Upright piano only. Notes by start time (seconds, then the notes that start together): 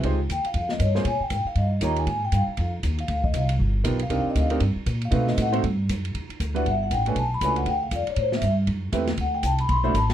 0.04 G#3 D#4 F4 G4 C5
0.95 A#3 C#4 F4 G#4 C5
1.82 A#3 D#4 F4 G4 C#5
3.84 B3 D#4 F4 G4 A#4
4.10 C4 D4 D#4 G4 A#4
4.50 C4 D4 D#4 G4 A#4
5.11 A3 C4 D#4 F#4 B4
5.52 A3 C4 D#4 F#4 C5
6.54 G3 D4 E4 F#4 B4
7.07 A3 C#4 D4 F#4 B4
7.42 A3 C#4 D4 F#4 B4
8.92 A3 C4 E4 G4 B4
9.83 A3 D4 E4 F#4 C5